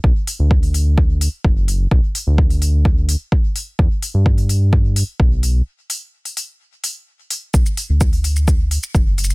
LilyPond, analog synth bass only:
\new Staff \with { instrumentName = "Analog synth bass" } { \clef bass \time 4/4 \key e \dorian \tempo 4 = 128 b,,16 r8 d,2 r16 fis,,4 | b,,16 r8 d,2 r4 r16 | e,16 r8 g,2 r16 b,,4 | r1 |
b,,16 r8 d,2 r16 fis,,4 | }